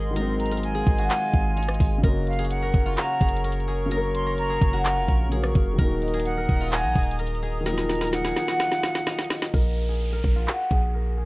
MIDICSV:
0, 0, Header, 1, 8, 480
1, 0, Start_track
1, 0, Key_signature, -5, "minor"
1, 0, Tempo, 468750
1, 165, Time_signature, 4, 2, 24, 8
1, 11522, End_track
2, 0, Start_track
2, 0, Title_t, "Flute"
2, 0, Program_c, 0, 73
2, 404, Note_on_c, 0, 82, 79
2, 633, Note_off_c, 0, 82, 0
2, 649, Note_on_c, 0, 80, 88
2, 2046, Note_off_c, 0, 80, 0
2, 2332, Note_on_c, 0, 77, 88
2, 2554, Note_off_c, 0, 77, 0
2, 2561, Note_on_c, 0, 78, 86
2, 3014, Note_off_c, 0, 78, 0
2, 3048, Note_on_c, 0, 82, 91
2, 3498, Note_off_c, 0, 82, 0
2, 4246, Note_on_c, 0, 84, 93
2, 4474, Note_off_c, 0, 84, 0
2, 4486, Note_on_c, 0, 82, 95
2, 4937, Note_off_c, 0, 82, 0
2, 4964, Note_on_c, 0, 82, 82
2, 5416, Note_off_c, 0, 82, 0
2, 6164, Note_on_c, 0, 75, 79
2, 6392, Note_off_c, 0, 75, 0
2, 6398, Note_on_c, 0, 78, 97
2, 6853, Note_off_c, 0, 78, 0
2, 6886, Note_on_c, 0, 80, 104
2, 7337, Note_off_c, 0, 80, 0
2, 8083, Note_on_c, 0, 82, 72
2, 8312, Note_off_c, 0, 82, 0
2, 8328, Note_on_c, 0, 78, 95
2, 9726, Note_off_c, 0, 78, 0
2, 11522, End_track
3, 0, Start_track
3, 0, Title_t, "Analog synth pad"
3, 0, Program_c, 1, 89
3, 0, Note_on_c, 1, 68, 84
3, 0, Note_on_c, 1, 75, 83
3, 0, Note_on_c, 1, 78, 78
3, 0, Note_on_c, 1, 84, 98
3, 146, Note_off_c, 1, 78, 0
3, 165, Note_on_c, 1, 77, 80
3, 2047, Note_off_c, 1, 68, 0
3, 2047, Note_off_c, 1, 75, 0
3, 2047, Note_off_c, 1, 84, 0
3, 2066, Note_off_c, 1, 77, 0
3, 2085, Note_on_c, 1, 85, 97
3, 2086, Note_on_c, 1, 70, 88
3, 2086, Note_on_c, 1, 73, 77
3, 2086, Note_on_c, 1, 82, 78
3, 5887, Note_off_c, 1, 73, 0
3, 5887, Note_off_c, 1, 82, 0
3, 5887, Note_off_c, 1, 85, 0
3, 5925, Note_on_c, 1, 75, 78
3, 5926, Note_on_c, 1, 82, 81
3, 5926, Note_on_c, 1, 87, 97
3, 9725, Note_off_c, 1, 70, 0
3, 9727, Note_off_c, 1, 75, 0
3, 9727, Note_off_c, 1, 82, 0
3, 9727, Note_off_c, 1, 87, 0
3, 11522, End_track
4, 0, Start_track
4, 0, Title_t, "Guzheng"
4, 0, Program_c, 2, 107
4, 0, Note_on_c, 2, 66, 88
4, 0, Note_on_c, 2, 68, 81
4, 0, Note_on_c, 2, 70, 84
4, 159, Note_off_c, 2, 70, 0
4, 163, Note_on_c, 2, 70, 100
4, 520, Note_off_c, 2, 70, 0
4, 524, Note_on_c, 2, 70, 83
4, 759, Note_off_c, 2, 68, 0
4, 763, Note_on_c, 2, 68, 93
4, 1001, Note_off_c, 2, 66, 0
4, 1005, Note_on_c, 2, 66, 79
4, 1125, Note_on_c, 2, 65, 88
4, 1187, Note_off_c, 2, 66, 0
4, 1607, Note_on_c, 2, 63, 75
4, 2081, Note_off_c, 2, 70, 0
4, 2085, Note_on_c, 2, 70, 103
4, 2442, Note_off_c, 2, 68, 0
4, 2446, Note_on_c, 2, 68, 84
4, 2683, Note_off_c, 2, 70, 0
4, 2687, Note_on_c, 2, 70, 77
4, 2924, Note_off_c, 2, 65, 0
4, 2928, Note_on_c, 2, 65, 83
4, 3046, Note_on_c, 2, 66, 78
4, 3108, Note_off_c, 2, 65, 0
4, 3281, Note_off_c, 2, 68, 0
4, 3285, Note_on_c, 2, 68, 85
4, 3520, Note_off_c, 2, 70, 0
4, 3524, Note_on_c, 2, 70, 79
4, 3761, Note_off_c, 2, 68, 0
4, 3765, Note_on_c, 2, 68, 81
4, 4003, Note_off_c, 2, 70, 0
4, 4007, Note_on_c, 2, 70, 105
4, 4361, Note_off_c, 2, 70, 0
4, 4366, Note_on_c, 2, 70, 79
4, 4375, Note_off_c, 2, 63, 0
4, 4600, Note_off_c, 2, 68, 0
4, 4604, Note_on_c, 2, 68, 83
4, 4841, Note_off_c, 2, 66, 0
4, 4845, Note_on_c, 2, 66, 90
4, 4965, Note_on_c, 2, 65, 90
4, 5027, Note_off_c, 2, 66, 0
4, 5441, Note_off_c, 2, 68, 0
4, 5445, Note_on_c, 2, 68, 83
4, 5920, Note_off_c, 2, 70, 0
4, 5924, Note_on_c, 2, 70, 107
4, 6282, Note_off_c, 2, 68, 0
4, 6286, Note_on_c, 2, 68, 93
4, 6521, Note_off_c, 2, 70, 0
4, 6525, Note_on_c, 2, 70, 84
4, 6762, Note_off_c, 2, 65, 0
4, 6766, Note_on_c, 2, 65, 92
4, 6885, Note_on_c, 2, 66, 84
4, 6947, Note_off_c, 2, 65, 0
4, 7122, Note_off_c, 2, 68, 0
4, 7126, Note_on_c, 2, 68, 87
4, 7361, Note_off_c, 2, 70, 0
4, 7365, Note_on_c, 2, 70, 83
4, 7601, Note_off_c, 2, 68, 0
4, 7605, Note_on_c, 2, 68, 82
4, 7840, Note_off_c, 2, 70, 0
4, 7844, Note_on_c, 2, 70, 108
4, 8203, Note_off_c, 2, 70, 0
4, 8207, Note_on_c, 2, 70, 84
4, 8438, Note_off_c, 2, 68, 0
4, 8442, Note_on_c, 2, 68, 91
4, 8679, Note_off_c, 2, 66, 0
4, 8683, Note_on_c, 2, 66, 80
4, 8802, Note_on_c, 2, 65, 84
4, 8864, Note_off_c, 2, 66, 0
4, 9281, Note_on_c, 2, 63, 88
4, 9761, Note_off_c, 2, 70, 0
4, 9765, Note_on_c, 2, 70, 97
4, 10120, Note_off_c, 2, 68, 0
4, 10124, Note_on_c, 2, 68, 72
4, 10362, Note_off_c, 2, 70, 0
4, 10366, Note_on_c, 2, 70, 79
4, 10601, Note_off_c, 2, 65, 0
4, 10605, Note_on_c, 2, 65, 82
4, 10724, Note_on_c, 2, 66, 80
4, 10786, Note_off_c, 2, 65, 0
4, 10961, Note_off_c, 2, 68, 0
4, 10965, Note_on_c, 2, 68, 86
4, 11200, Note_off_c, 2, 70, 0
4, 11204, Note_on_c, 2, 70, 77
4, 11444, Note_off_c, 2, 68, 0
4, 11448, Note_on_c, 2, 68, 74
4, 11522, Note_off_c, 2, 63, 0
4, 11522, Note_off_c, 2, 66, 0
4, 11522, Note_off_c, 2, 68, 0
4, 11522, Note_off_c, 2, 70, 0
4, 11522, End_track
5, 0, Start_track
5, 0, Title_t, "Grand piano"
5, 0, Program_c, 3, 0
5, 0, Control_c, 3, 64, 127
5, 0, Note_on_c, 3, 51, 67
5, 0, Note_on_c, 3, 54, 62
5, 0, Note_on_c, 3, 56, 66
5, 0, Note_on_c, 3, 60, 66
5, 0, Note_on_c, 3, 63, 72
5, 111, Note_off_c, 3, 51, 0
5, 111, Note_on_c, 3, 51, 74
5, 112, Note_off_c, 3, 54, 0
5, 126, Note_off_c, 3, 56, 0
5, 138, Note_on_c, 3, 54, 65
5, 140, Note_off_c, 3, 60, 0
5, 154, Note_off_c, 3, 63, 0
5, 165, Note_on_c, 3, 56, 69
5, 192, Note_on_c, 3, 60, 64
5, 220, Note_on_c, 3, 63, 81
5, 2019, Note_off_c, 3, 51, 0
5, 2029, Note_on_c, 3, 49, 65
5, 2033, Note_off_c, 3, 54, 0
5, 2047, Note_off_c, 3, 56, 0
5, 2057, Note_on_c, 3, 54, 62
5, 2061, Note_off_c, 3, 60, 0
5, 2075, Note_off_c, 3, 63, 0
5, 2084, Note_on_c, 3, 58, 63
5, 2099, Control_c, 3, 64, 0
5, 2111, Note_on_c, 3, 61, 65
5, 2139, Note_on_c, 3, 66, 80
5, 2282, Control_c, 3, 64, 127
5, 3936, Note_off_c, 3, 49, 0
5, 3952, Note_on_c, 3, 49, 65
5, 3953, Note_off_c, 3, 54, 0
5, 3966, Note_off_c, 3, 58, 0
5, 3979, Note_on_c, 3, 54, 66
5, 3980, Note_off_c, 3, 61, 0
5, 3994, Note_off_c, 3, 66, 0
5, 4006, Note_on_c, 3, 58, 67
5, 4034, Note_on_c, 3, 61, 63
5, 4060, Note_on_c, 3, 70, 81
5, 5389, Note_off_c, 3, 49, 0
5, 5403, Note_off_c, 3, 54, 0
5, 5417, Note_off_c, 3, 58, 0
5, 5419, Note_on_c, 3, 49, 50
5, 5431, Note_off_c, 3, 61, 0
5, 5433, Note_on_c, 3, 54, 46
5, 5445, Note_off_c, 3, 70, 0
5, 5447, Note_on_c, 3, 58, 47
5, 5460, Note_on_c, 3, 61, 51
5, 5473, Note_on_c, 3, 66, 59
5, 5872, Note_on_c, 3, 51, 67
5, 5884, Note_off_c, 3, 54, 0
5, 5899, Note_on_c, 3, 54, 61
5, 5911, Note_off_c, 3, 58, 0
5, 5912, Note_off_c, 3, 49, 0
5, 5927, Note_on_c, 3, 58, 67
5, 5933, Note_off_c, 3, 61, 0
5, 5939, Note_off_c, 3, 66, 0
5, 5939, Control_c, 3, 64, 0
5, 5954, Note_on_c, 3, 63, 70
5, 5981, Note_on_c, 3, 66, 72
5, 6127, Control_c, 3, 64, 127
5, 7774, Note_off_c, 3, 51, 0
5, 7790, Note_on_c, 3, 51, 68
5, 7794, Note_off_c, 3, 54, 0
5, 7807, Note_off_c, 3, 58, 0
5, 7817, Note_on_c, 3, 54, 62
5, 7821, Note_off_c, 3, 63, 0
5, 7835, Note_off_c, 3, 66, 0
5, 7844, Note_on_c, 3, 58, 59
5, 7871, Note_on_c, 3, 63, 66
5, 7899, Note_on_c, 3, 53, 79
5, 9699, Note_off_c, 3, 51, 0
5, 9713, Note_off_c, 3, 54, 0
5, 9726, Note_off_c, 3, 58, 0
5, 9740, Note_off_c, 3, 63, 0
5, 9754, Note_off_c, 3, 53, 0
5, 9776, Control_c, 3, 64, 0
5, 11522, End_track
6, 0, Start_track
6, 0, Title_t, "808-style bass"
6, 0, Program_c, 4, 38
6, 0, Note_on_c, 4, 32, 101
6, 844, Note_off_c, 4, 32, 0
6, 886, Note_on_c, 4, 32, 105
6, 1116, Note_off_c, 4, 32, 0
6, 1366, Note_on_c, 4, 32, 103
6, 1827, Note_off_c, 4, 32, 0
6, 1846, Note_on_c, 4, 32, 111
6, 2076, Note_off_c, 4, 32, 0
6, 2085, Note_on_c, 4, 30, 111
6, 2777, Note_off_c, 4, 30, 0
6, 2806, Note_on_c, 4, 30, 106
6, 3036, Note_off_c, 4, 30, 0
6, 3287, Note_on_c, 4, 30, 102
6, 4685, Note_off_c, 4, 30, 0
6, 4726, Note_on_c, 4, 30, 108
6, 5086, Note_on_c, 4, 29, 103
6, 5101, Note_off_c, 4, 30, 0
6, 5199, Note_off_c, 4, 29, 0
6, 5206, Note_on_c, 4, 34, 102
6, 5666, Note_off_c, 4, 34, 0
6, 5686, Note_on_c, 4, 30, 111
6, 5916, Note_off_c, 4, 30, 0
6, 5925, Note_on_c, 4, 27, 111
6, 6616, Note_off_c, 4, 27, 0
6, 6645, Note_on_c, 4, 27, 107
6, 7004, Note_on_c, 4, 34, 101
6, 7020, Note_off_c, 4, 27, 0
6, 7119, Note_off_c, 4, 34, 0
6, 7126, Note_on_c, 4, 27, 105
6, 8525, Note_off_c, 4, 27, 0
6, 9766, Note_on_c, 4, 34, 108
6, 10457, Note_off_c, 4, 34, 0
6, 10486, Note_on_c, 4, 34, 102
6, 10716, Note_off_c, 4, 34, 0
6, 10966, Note_on_c, 4, 34, 104
6, 11522, Note_off_c, 4, 34, 0
6, 11522, End_track
7, 0, Start_track
7, 0, Title_t, "Downlifter"
7, 0, Program_c, 5, 103
7, 9766, Note_on_c, 5, 60, 82
7, 11522, Note_off_c, 5, 60, 0
7, 11522, End_track
8, 0, Start_track
8, 0, Title_t, "Drums"
8, 165, Note_on_c, 9, 42, 88
8, 267, Note_off_c, 9, 42, 0
8, 406, Note_on_c, 9, 42, 49
8, 465, Note_off_c, 9, 42, 0
8, 465, Note_on_c, 9, 42, 59
8, 525, Note_off_c, 9, 42, 0
8, 525, Note_on_c, 9, 42, 70
8, 585, Note_off_c, 9, 42, 0
8, 585, Note_on_c, 9, 42, 80
8, 646, Note_off_c, 9, 42, 0
8, 646, Note_on_c, 9, 42, 74
8, 748, Note_off_c, 9, 42, 0
8, 885, Note_on_c, 9, 42, 61
8, 886, Note_on_c, 9, 36, 99
8, 988, Note_off_c, 9, 36, 0
8, 988, Note_off_c, 9, 42, 0
8, 1005, Note_on_c, 9, 42, 60
8, 1107, Note_off_c, 9, 42, 0
8, 1125, Note_on_c, 9, 39, 123
8, 1125, Note_on_c, 9, 42, 91
8, 1227, Note_off_c, 9, 39, 0
8, 1227, Note_off_c, 9, 42, 0
8, 1366, Note_on_c, 9, 36, 91
8, 1468, Note_off_c, 9, 36, 0
8, 1606, Note_on_c, 9, 42, 64
8, 1665, Note_off_c, 9, 42, 0
8, 1665, Note_on_c, 9, 42, 64
8, 1725, Note_off_c, 9, 42, 0
8, 1725, Note_on_c, 9, 37, 97
8, 1725, Note_on_c, 9, 42, 64
8, 1785, Note_off_c, 9, 42, 0
8, 1785, Note_on_c, 9, 42, 66
8, 1828, Note_off_c, 9, 37, 0
8, 1846, Note_on_c, 9, 36, 99
8, 1846, Note_on_c, 9, 46, 57
8, 1888, Note_off_c, 9, 42, 0
8, 1948, Note_off_c, 9, 36, 0
8, 1948, Note_off_c, 9, 46, 0
8, 2085, Note_on_c, 9, 36, 122
8, 2085, Note_on_c, 9, 42, 89
8, 2187, Note_off_c, 9, 42, 0
8, 2188, Note_off_c, 9, 36, 0
8, 2326, Note_on_c, 9, 42, 47
8, 2385, Note_off_c, 9, 42, 0
8, 2385, Note_on_c, 9, 42, 57
8, 2445, Note_off_c, 9, 42, 0
8, 2445, Note_on_c, 9, 42, 69
8, 2505, Note_off_c, 9, 42, 0
8, 2505, Note_on_c, 9, 42, 80
8, 2566, Note_off_c, 9, 42, 0
8, 2566, Note_on_c, 9, 42, 76
8, 2668, Note_off_c, 9, 42, 0
8, 2806, Note_on_c, 9, 36, 100
8, 2908, Note_off_c, 9, 36, 0
8, 3045, Note_on_c, 9, 39, 118
8, 3045, Note_on_c, 9, 42, 93
8, 3147, Note_off_c, 9, 39, 0
8, 3147, Note_off_c, 9, 42, 0
8, 3285, Note_on_c, 9, 42, 63
8, 3286, Note_on_c, 9, 36, 94
8, 3365, Note_off_c, 9, 42, 0
8, 3365, Note_on_c, 9, 42, 65
8, 3389, Note_off_c, 9, 36, 0
8, 3446, Note_off_c, 9, 42, 0
8, 3446, Note_on_c, 9, 42, 63
8, 3526, Note_off_c, 9, 42, 0
8, 3526, Note_on_c, 9, 42, 78
8, 3606, Note_off_c, 9, 42, 0
8, 3606, Note_on_c, 9, 42, 61
8, 3686, Note_off_c, 9, 42, 0
8, 3686, Note_on_c, 9, 42, 45
8, 3788, Note_off_c, 9, 42, 0
8, 4005, Note_on_c, 9, 42, 90
8, 4107, Note_off_c, 9, 42, 0
8, 4246, Note_on_c, 9, 42, 76
8, 4348, Note_off_c, 9, 42, 0
8, 4486, Note_on_c, 9, 42, 76
8, 4589, Note_off_c, 9, 42, 0
8, 4726, Note_on_c, 9, 36, 99
8, 4726, Note_on_c, 9, 42, 72
8, 4828, Note_off_c, 9, 36, 0
8, 4828, Note_off_c, 9, 42, 0
8, 4965, Note_on_c, 9, 39, 123
8, 4965, Note_on_c, 9, 42, 95
8, 5067, Note_off_c, 9, 39, 0
8, 5067, Note_off_c, 9, 42, 0
8, 5206, Note_on_c, 9, 36, 92
8, 5308, Note_off_c, 9, 36, 0
8, 5445, Note_on_c, 9, 42, 79
8, 5547, Note_off_c, 9, 42, 0
8, 5565, Note_on_c, 9, 37, 98
8, 5565, Note_on_c, 9, 42, 45
8, 5668, Note_off_c, 9, 37, 0
8, 5668, Note_off_c, 9, 42, 0
8, 5686, Note_on_c, 9, 36, 102
8, 5686, Note_on_c, 9, 42, 81
8, 5788, Note_off_c, 9, 36, 0
8, 5788, Note_off_c, 9, 42, 0
8, 5925, Note_on_c, 9, 36, 122
8, 5925, Note_on_c, 9, 42, 91
8, 6027, Note_off_c, 9, 36, 0
8, 6027, Note_off_c, 9, 42, 0
8, 6165, Note_on_c, 9, 42, 48
8, 6225, Note_off_c, 9, 42, 0
8, 6225, Note_on_c, 9, 42, 59
8, 6285, Note_off_c, 9, 42, 0
8, 6285, Note_on_c, 9, 42, 70
8, 6346, Note_off_c, 9, 42, 0
8, 6346, Note_on_c, 9, 42, 81
8, 6405, Note_off_c, 9, 42, 0
8, 6405, Note_on_c, 9, 42, 75
8, 6508, Note_off_c, 9, 42, 0
8, 6646, Note_on_c, 9, 36, 97
8, 6748, Note_off_c, 9, 36, 0
8, 6884, Note_on_c, 9, 39, 120
8, 6884, Note_on_c, 9, 42, 94
8, 6987, Note_off_c, 9, 39, 0
8, 6987, Note_off_c, 9, 42, 0
8, 7125, Note_on_c, 9, 42, 64
8, 7126, Note_on_c, 9, 36, 90
8, 7205, Note_off_c, 9, 42, 0
8, 7205, Note_on_c, 9, 42, 63
8, 7228, Note_off_c, 9, 36, 0
8, 7285, Note_off_c, 9, 42, 0
8, 7285, Note_on_c, 9, 42, 64
8, 7365, Note_off_c, 9, 42, 0
8, 7365, Note_on_c, 9, 42, 78
8, 7446, Note_off_c, 9, 42, 0
8, 7446, Note_on_c, 9, 42, 61
8, 7526, Note_off_c, 9, 42, 0
8, 7526, Note_on_c, 9, 42, 46
8, 7628, Note_off_c, 9, 42, 0
8, 7846, Note_on_c, 9, 38, 64
8, 7846, Note_on_c, 9, 42, 87
8, 7948, Note_off_c, 9, 38, 0
8, 7948, Note_off_c, 9, 42, 0
8, 7965, Note_on_c, 9, 38, 57
8, 8068, Note_off_c, 9, 38, 0
8, 8086, Note_on_c, 9, 38, 69
8, 8086, Note_on_c, 9, 42, 48
8, 8146, Note_off_c, 9, 42, 0
8, 8146, Note_on_c, 9, 42, 59
8, 8188, Note_off_c, 9, 38, 0
8, 8205, Note_off_c, 9, 42, 0
8, 8205, Note_on_c, 9, 38, 63
8, 8205, Note_on_c, 9, 42, 72
8, 8265, Note_off_c, 9, 42, 0
8, 8265, Note_on_c, 9, 42, 82
8, 8308, Note_off_c, 9, 38, 0
8, 8325, Note_on_c, 9, 38, 76
8, 8326, Note_off_c, 9, 42, 0
8, 8326, Note_on_c, 9, 42, 74
8, 8428, Note_off_c, 9, 38, 0
8, 8428, Note_off_c, 9, 42, 0
8, 8446, Note_on_c, 9, 38, 68
8, 8548, Note_off_c, 9, 38, 0
8, 8566, Note_on_c, 9, 38, 84
8, 8566, Note_on_c, 9, 42, 59
8, 8668, Note_off_c, 9, 38, 0
8, 8668, Note_off_c, 9, 42, 0
8, 8686, Note_on_c, 9, 38, 74
8, 8686, Note_on_c, 9, 42, 63
8, 8788, Note_off_c, 9, 38, 0
8, 8788, Note_off_c, 9, 42, 0
8, 8805, Note_on_c, 9, 42, 96
8, 8806, Note_on_c, 9, 38, 94
8, 8908, Note_off_c, 9, 38, 0
8, 8908, Note_off_c, 9, 42, 0
8, 8925, Note_on_c, 9, 38, 80
8, 9028, Note_off_c, 9, 38, 0
8, 9046, Note_on_c, 9, 38, 99
8, 9148, Note_off_c, 9, 38, 0
8, 9166, Note_on_c, 9, 38, 87
8, 9268, Note_off_c, 9, 38, 0
8, 9285, Note_on_c, 9, 38, 103
8, 9285, Note_on_c, 9, 42, 64
8, 9345, Note_off_c, 9, 42, 0
8, 9345, Note_on_c, 9, 42, 67
8, 9388, Note_off_c, 9, 38, 0
8, 9406, Note_off_c, 9, 42, 0
8, 9406, Note_on_c, 9, 38, 89
8, 9406, Note_on_c, 9, 42, 65
8, 9466, Note_off_c, 9, 42, 0
8, 9466, Note_on_c, 9, 42, 66
8, 9508, Note_off_c, 9, 38, 0
8, 9525, Note_on_c, 9, 38, 112
8, 9526, Note_on_c, 9, 46, 58
8, 9568, Note_off_c, 9, 42, 0
8, 9628, Note_off_c, 9, 38, 0
8, 9628, Note_off_c, 9, 46, 0
8, 9645, Note_on_c, 9, 38, 102
8, 9748, Note_off_c, 9, 38, 0
8, 9766, Note_on_c, 9, 36, 117
8, 9868, Note_off_c, 9, 36, 0
8, 10486, Note_on_c, 9, 36, 100
8, 10588, Note_off_c, 9, 36, 0
8, 10725, Note_on_c, 9, 39, 117
8, 10827, Note_off_c, 9, 39, 0
8, 10966, Note_on_c, 9, 36, 88
8, 11068, Note_off_c, 9, 36, 0
8, 11522, End_track
0, 0, End_of_file